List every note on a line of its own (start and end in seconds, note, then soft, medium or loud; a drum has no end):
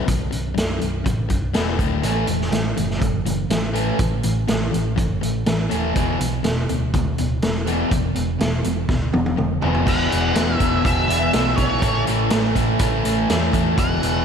0.06 0.29 B0 medium
0.06 0.29 B1 medium
0.06 0.29 F#2 medium
0.06 kick loud
0.06 closed hi-hat medium
0.31 0.53 B0 medium
0.31 0.53 B1 medium
0.31 0.53 F#2 medium
0.31 closed hi-hat medium
0.54 0.77 B0 medium
0.54 0.78 B1 medium
0.54 0.78 F#2 medium
0.54 snare medium
0.54 closed hi-hat medium
0.79 1.02 B0 medium
0.79 1.02 B1 medium
0.79 1.03 F#2 medium
0.79 closed hi-hat medium
1.04 1.26 A1 medium
1.04 1.27 B1 medium
1.04 1.27 F#2 medium
1.04 kick medium
1.04 closed hi-hat medium
1.29 1.51 B0 medium
1.29 1.52 B1 medium
1.29 1.52 F#2 medium
1.29 kick medium
1.29 closed hi-hat medium
1.53 1.79 E1 medium
1.53 1.77 E2 medium
1.53 1.78 B2 medium
1.53 1.78 E3 medium
1.53 snare medium
1.53 closed hi-hat medium
1.78 1.99 D1 medium
1.78 2.02 D2 medium
1.78 2.02 A2 medium
1.78 2.03 D3 medium
1.78 kick medium
1.78 closed hi-hat medium
2.03 2.24 A1 medium
2.03 2.27 A2 medium
2.03 2.27 E3 medium
2.03 2.27 A3 medium
2.03 closed hi-hat medium
2.27 2.48 E1 medium
2.27 2.50 A2 medium
2.27 2.50 E3 medium
2.27 closed hi-hat medium
2.41 snare soft
2.51 2.72 A1 medium
2.51 2.75 A2 medium
2.51 2.75 E3 medium
2.51 snare loud
2.51 closed hi-hat medium
2.77 2.97 F#1 medium
2.77 2.98 A2 soft
2.77 2.98 E3 medium
2.77 closed hi-hat medium
2.90 snare soft
2.99 3.22 F#1 medium
2.99 3.22 A2 medium
2.99 3.23 E3 medium
2.99 kick loud
2.99 closed hi-hat medium
3.24 3.45 F#1 medium
3.24 3.48 A2 medium
3.24 3.48 E3 medium
3.24 closed hi-hat medium
3.50 3.90 A1 medium
3.50 3.72 A2 medium
3.50 3.73 E3 medium
3.50 snare medium
3.50 closed hi-hat medium
3.73 3.97 A2 medium
3.73 3.97 E3 medium
3.73 3.97 A3 medium
3.73 closed hi-hat medium
3.98 4.19 A1 medium
3.98 4.21 A2 medium
3.98 4.21 E3 medium
3.98 kick loud
3.98 closed hi-hat medium
4.23 4.44 A1 medium
4.23 4.46 A2 medium
4.23 4.46 E3 medium
4.23 closed hi-hat medium
4.48 4.69 A1 medium
4.48 4.70 A2 medium
4.48 4.70 E3 medium
4.48 snare medium
4.48 closed hi-hat medium
4.71 4.94 A1 medium
4.71 4.94 A2 medium
4.71 4.94 E3 medium
4.71 closed hi-hat medium
4.96 5.18 F#1 medium
4.96 5.19 A2 medium
4.96 5.19 E3 medium
4.96 kick loud
4.96 closed hi-hat medium
5.21 5.43 A1 medium
5.21 5.43 A2 medium
5.21 5.44 E3 medium
5.21 closed hi-hat medium
5.46 5.66 A1 medium
5.46 5.68 A2 medium
5.46 5.68 E3 medium
5.46 snare loud
5.46 closed hi-hat medium
5.69 5.91 D#1 medium
5.69 5.93 A2 medium
5.69 5.93 E3 medium
5.69 5.93 A3 medium
5.69 closed hi-hat medium
5.94 6.16 E1 medium
5.94 6.18 E2 medium
5.94 6.18 B2 medium
5.94 6.18 E3 medium
5.94 kick medium
5.94 closed hi-hat medium
6.19 6.40 B1 medium
6.19 6.41 E2 medium
6.19 6.42 B2 medium
6.19 closed hi-hat medium
6.43 6.64 E1 medium
6.43 6.66 E2 medium
6.43 6.66 B2 medium
6.43 snare medium
6.43 closed hi-hat medium
6.69 6.89 D1 medium
6.69 6.91 E2 medium
6.69 6.91 B2 medium
6.69 closed hi-hat medium
6.94 7.14 D2 medium
6.94 7.16 E2 medium
6.94 7.16 B2 medium
6.94 kick loud
6.94 closed hi-hat medium
7.18 7.38 D1 medium
7.18 7.40 E2 medium
7.18 7.40 B2 medium
7.18 closed hi-hat medium
7.42 7.82 E1 medium
7.42 7.64 E2 medium
7.42 7.65 B2 medium
7.42 snare medium
7.42 closed hi-hat medium
7.67 7.90 E2 medium
7.67 7.90 B2 medium
7.67 7.90 E3 medium
7.67 closed hi-hat medium
7.91 8.11 E1 medium
7.91 8.14 E2 medium
7.91 8.14 B2 medium
7.91 kick loud
7.91 closed hi-hat medium
8.15 8.36 E1 medium
8.15 8.37 E2 medium
8.15 8.38 B2 medium
8.15 closed hi-hat medium
8.40 8.60 E1 medium
8.40 8.63 E2 medium
8.40 8.63 B2 medium
8.40 snare loud
8.40 closed hi-hat medium
8.64 8.85 E1 medium
8.64 8.87 E2 medium
8.64 8.87 B2 medium
8.64 closed hi-hat medium
8.89 9.09 D1 medium
8.89 9.11 E2 medium
8.89 9.12 B2 medium
8.89 kick loud
8.89 snare soft
9.13 9.34 E1 medium
9.13 9.35 E2 medium
9.13 9.36 B2 medium
9.13 high tom medium
9.26 high tom medium
9.36 9.58 E1 medium
9.36 9.59 E2 medium
9.36 9.60 B2 medium
9.36 mid tom medium
9.62 9.83 E1 medium
9.62 9.84 E2 medium
9.62 9.84 B2 medium
9.62 9.85 E3 medium
9.62 floor tom medium
9.74 floor tom medium
9.85 10.07 E1 medium
9.85 10.08 E2 medium
9.85 10.09 B2 medium
9.85 10.10 E3 medium
9.85 kick loud
9.85 crash loud
9.89 10.54 F#5 medium
10.09 10.32 E1 medium
10.09 10.32 E2 medium
10.09 10.32 B2 medium
10.09 10.34 E3 medium
10.09 closed hi-hat medium
10.33 10.55 E1 medium
10.33 10.57 E2 medium
10.33 10.57 B2 medium
10.33 10.59 E3 medium
10.33 snare loud
10.33 closed hi-hat medium
10.54 10.84 E2 medium
10.54 10.82 E5 medium
10.59 10.80 E1 medium
10.59 10.84 B2 medium
10.59 10.85 E3 medium
10.59 kick medium
10.59 closed hi-hat medium
10.85 11.04 E1 medium
10.85 11.07 E2 medium
10.85 11.08 B2 medium
10.85 11.09 E3 medium
10.85 11.07 E5 medium
10.85 kick loud
10.85 closed hi-hat medium
11.08 11.29 E1 medium
11.08 11.33 E2 medium
11.08 11.33 B2 medium
11.08 11.34 E3 medium
11.08 11.56 E5 medium
11.08 closed hi-hat medium
11.33 11.53 B1 medium
11.33 11.56 E2 medium
11.33 11.57 B2 medium
11.33 11.58 E3 medium
11.33 snare loud
11.33 closed hi-hat medium
11.56 11.77 B1 medium
11.56 11.81 E2 medium
11.56 11.81 B2 medium
11.56 11.82 E3 medium
11.56 12.02 C#5 medium
11.56 kick medium
11.56 closed hi-hat medium
11.81 12.02 A1 medium
11.81 12.05 A2 medium
11.81 12.07 E3 loud
11.81 12.07 A3 loud
11.81 kick loud
11.81 closed hi-hat medium
12.06 12.27 A1 medium
12.06 12.31 A2 medium
12.06 12.32 E3 medium
12.06 12.31 A3 medium
12.06 closed hi-hat medium
12.30 12.52 A1 medium
12.30 12.54 A2 medium
12.30 12.55 E3 medium
12.30 12.55 A3 medium
12.30 snare loud
12.30 closed hi-hat medium
12.55 12.75 A1 medium
12.55 12.79 A2 medium
12.55 12.81 E3 medium
12.55 12.80 A3 medium
12.55 kick medium
12.55 closed hi-hat medium
12.79 13.00 A1 medium
12.79 13.04 A2 medium
12.79 13.05 E3 medium
12.79 13.04 A3 loud
12.79 kick loud
12.79 closed hi-hat medium
13.05 13.24 A1 medium
13.05 13.28 A2 medium
13.05 13.30 E3 medium
13.05 13.30 A3 medium
13.05 closed hi-hat medium
13.29 13.49 E2 medium
13.29 13.52 A2 medium
13.29 13.53 E3 loud
13.29 13.54 A3 loud
13.29 snare loud
13.29 closed hi-hat medium
13.53 13.73 E2 medium
13.53 13.76 A2 medium
13.53 13.77 E3 medium
13.53 13.77 A3 medium
13.53 kick medium
13.53 closed hi-hat medium
13.77 13.98 E1 medium
13.77 14.01 E2 medium
13.77 14.01 B2 medium
13.77 14.02 E3 loud
13.77 14.25 F#5 medium
13.77 kick loud
13.77 closed hi-hat medium
14.02 14.22 E1 medium
14.02 14.25 E2 medium
14.02 14.25 B2 medium
14.02 14.25 E3 medium
14.02 closed hi-hat medium